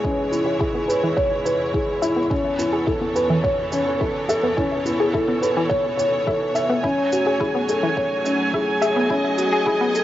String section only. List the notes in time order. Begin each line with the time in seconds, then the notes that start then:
Already playing: E2 E3 G#3 C#5
0.04 E4
2.31 E3 B3 A4 C#5
6.84 F#2 F#3 A3 G#5
9.11 D#5